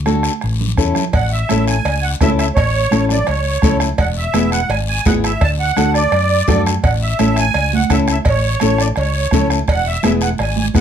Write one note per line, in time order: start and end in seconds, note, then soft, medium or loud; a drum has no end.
0.00 0.28 D2 medium
0.06 0.31 D4 medium
0.06 0.31 F#4 medium
0.06 0.32 A4 medium
0.06 bombo rim medium
0.06 high conga medium
0.06 short guiro medium
0.23 bombo rim medium
0.23 short guiro medium
0.41 0.72 A1 medium
0.41 bombo rim medium
0.41 long guiro medium
0.61 low conga medium
0.77 0.92 E2 medium
0.77 1.03 C#4 medium
0.77 1.03 E4 medium
0.77 1.03 A4 medium
0.77 bombo low medium
0.77 bombo rim medium
0.77 low conga medium
0.77 short guiro medium
0.95 bombo rim medium
0.95 low conga medium
0.95 short guiro medium
1.13 1.42 A1 medium
1.13 1.31 F#5 medium
1.13 bombo low medium
1.13 bombo rim medium
1.13 cowbell medium
1.13 long guiro medium
1.32 1.65 E5 medium
1.49 1.79 A1 medium
1.49 1.75 C#4 medium
1.49 1.75 E4 medium
1.49 1.75 A4 medium
1.49 bombo rim medium
1.49 cowbell medium
1.49 high conga medium
1.49 short guiro medium
1.68 2.04 G#5 medium
1.68 bombo rim medium
1.68 short guiro medium
1.85 2.14 C#2 medium
1.85 bombo rim medium
1.85 cowbell medium
1.85 long guiro medium
2.02 2.11 F#5 medium
2.21 2.49 C#2 medium
2.21 2.46 C#4 medium
2.21 2.46 E4 medium
2.21 2.47 A4 medium
2.21 2.30 E5 medium
2.21 bombo low medium
2.21 bombo rim medium
2.21 cowbell medium
2.21 high conga medium
2.21 low timbale medium
2.21 short guiro medium
2.38 2.46 E5 medium
2.38 bombo rim medium
2.38 short guiro medium
2.55 2.85 A1 loud
2.55 3.05 C#5 loud
2.55 bombo low medium
2.55 bombo rim medium
2.55 cowbell medium
2.55 long guiro medium
2.91 3.21 A1 loud
2.91 3.17 C#4 medium
2.91 3.17 E4 medium
2.91 3.17 A4 medium
2.91 bombo rim medium
2.91 cowbell medium
2.91 high conga medium
2.91 short guiro medium
3.09 3.27 D5 medium
3.09 bombo rim medium
3.09 low conga medium
3.09 short guiro medium
3.27 3.56 C#2 medium
3.27 3.77 C#5 medium
3.27 bombo rim medium
3.27 cowbell medium
3.27 long guiro medium
3.62 3.91 C#2 medium
3.62 3.88 C#4 medium
3.62 3.88 E4 medium
3.62 3.89 A4 medium
3.62 bombo low medium
3.62 bombo rim medium
3.62 cowbell medium
3.62 high conga medium
3.62 low conga medium
3.62 short guiro medium
3.80 bombo rim medium
3.80 short guiro medium
3.98 4.27 E1 loud
3.98 4.07 F#5 loud
3.98 bombo low medium
3.98 bombo rim medium
3.98 cowbell medium
3.98 long guiro medium
4.17 4.50 E5 medium
4.34 4.63 E1 medium
4.34 4.59 B3 medium
4.34 4.59 E4 medium
4.34 4.60 G#4 medium
4.34 bombo rim medium
4.34 cowbell medium
4.34 high conga medium
4.34 short guiro medium
4.52 4.70 F#5 medium
4.52 bombo rim medium
4.52 short guiro medium
4.69 4.98 G#1 loud
4.69 4.78 G#5 medium
4.69 bombo rim medium
4.69 cowbell medium
4.69 long guiro medium
4.88 5.05 G#5 loud
5.05 5.34 G#1 medium
5.05 5.31 B3 medium
5.05 5.31 E4 medium
5.05 5.31 G#4 medium
5.05 5.14 F#5 medium
5.05 bombo low medium
5.05 bombo rim medium
5.05 cowbell medium
5.05 high conga medium
5.05 low timbale medium
5.05 short guiro medium
5.24 5.42 E5 medium
5.24 bombo rim medium
5.24 short guiro medium
5.41 5.70 D2 loud
5.41 5.50 A5 loud
5.41 bombo low medium
5.41 bombo rim medium
5.41 cowbell medium
5.41 long guiro medium
5.60 5.93 F#5 medium
5.76 6.06 D2 medium
5.76 6.02 D4 medium
5.76 6.02 F#4 medium
5.76 6.02 A4 medium
5.76 bombo rim medium
5.76 cowbell medium
5.76 high conga medium
5.76 short guiro medium
5.94 6.62 D5 medium
5.94 bombo rim medium
5.94 short guiro medium
6.12 6.41 F#2 loud
6.12 bombo rim medium
6.12 cowbell medium
6.12 long guiro medium
6.48 6.77 F#2 medium
6.48 6.73 D4 medium
6.48 6.73 F#4 medium
6.48 6.73 A4 medium
6.48 bombo low medium
6.48 bombo rim medium
6.48 cowbell medium
6.48 high conga medium
6.48 low conga medium
6.48 low timbale medium
6.48 short guiro medium
6.66 bombo rim medium
6.66 short guiro medium
6.83 7.12 A1 loud
6.83 6.91 F#5 medium
6.83 bombo low medium
6.83 bombo rim medium
6.83 cowbell medium
6.83 long guiro medium
7.02 7.38 E5 medium
7.19 7.48 A1 loud
7.19 7.44 C#4 medium
7.19 7.44 E4 medium
7.19 7.45 A4 medium
7.19 bombo rim medium
7.19 cowbell medium
7.19 high conga medium
7.19 short guiro medium
7.36 7.75 G#5 loud
7.36 bombo rim medium
7.36 short guiro medium
7.54 7.83 C#2 loud
7.54 bombo rim medium
7.54 cowbell medium
7.54 long guiro medium
7.73 7.92 F#5 medium
7.73 high conga medium
7.90 8.19 C#2 medium
7.90 8.15 C#4 medium
7.90 8.16 E4 medium
7.90 8.16 A4 medium
7.90 7.99 E5 medium
7.90 bombo low medium
7.90 bombo rim medium
7.90 cowbell medium
7.90 high conga medium
7.90 short guiro medium
8.08 8.18 E5 medium
8.08 bombo rim medium
8.08 short guiro medium
8.25 8.54 A1 loud
8.25 8.82 C#5 medium
8.25 bombo low medium
8.25 bombo rim medium
8.25 cowbell medium
8.25 long guiro medium
8.60 8.91 A1 medium
8.60 8.87 C#4 medium
8.60 8.87 E4 medium
8.60 8.87 A4 medium
8.60 bombo rim medium
8.60 cowbell medium
8.60 high conga medium
8.60 short guiro medium
8.78 8.88 D5 medium
8.78 bombo rim medium
8.78 short guiro medium
8.96 9.26 C#2 loud
8.96 9.48 C#5 medium
8.96 bombo rim medium
8.96 cowbell medium
8.96 long guiro medium
9.31 9.61 C#2 medium
9.31 9.58 C#4 medium
9.31 9.58 E4 medium
9.31 9.58 A4 medium
9.31 bombo low medium
9.31 bombo rim medium
9.31 cowbell medium
9.31 high conga medium
9.31 low conga medium
9.31 short guiro medium
9.50 bombo rim medium
9.50 short guiro medium
9.68 9.97 E1 loud
9.68 9.88 F#5 loud
9.68 bombo low medium
9.68 bombo rim medium
9.68 cowbell medium
9.68 long guiro medium
9.87 10.03 E5 medium
10.03 10.33 E1 loud
10.03 10.29 B3 medium
10.03 10.29 E4 medium
10.03 10.29 G#4 medium
10.03 10.12 E5 medium
10.03 bombo rim medium
10.03 cowbell medium
10.03 high conga medium
10.03 short guiro medium
10.21 10.30 F#5 medium
10.21 bombo rim medium
10.21 short guiro medium
10.38 10.68 G#1 loud
10.38 10.56 G#5 medium
10.38 bombo rim medium
10.38 cowbell medium
10.38 long guiro medium
10.56 10.66 G#5 medium
10.56 high conga medium
10.74 10.81 G#1 medium
10.74 10.81 B3 medium
10.74 10.81 E4 medium
10.74 10.81 G#4 medium
10.74 10.81 F#5 medium
10.74 bombo low medium
10.74 bombo rim medium
10.74 cowbell medium
10.74 high conga medium
10.74 short guiro medium